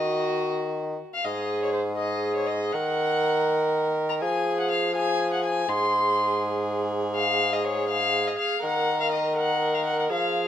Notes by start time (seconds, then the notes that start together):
Already playing: D#3 F#4 D#5
1.14 F5
1.25 G#2 G#4 D#5
1.63 C#5
1.73 C5
1.97 G#4 D#5
2.36 C#5
2.47 D#5
2.72 D#3 A#4 F#5
4.09 A#5
4.21 F3 G#4 G#5
4.60 F#5
4.71 F5
4.96 G#4 G#5
5.33 F#5
5.44 G#5
5.68 G#2 G#4 C6
7.15 F5
7.53 D#5
7.64 C#5
7.89 F5
8.27 D#5
8.39 F5
8.62 D#3 A#4 F#5
9.01 F5
9.12 D#5
9.36 A#4 F#5
9.75 F5
9.86 F#5
9.99 F#5
10.10 F3 G#4 F5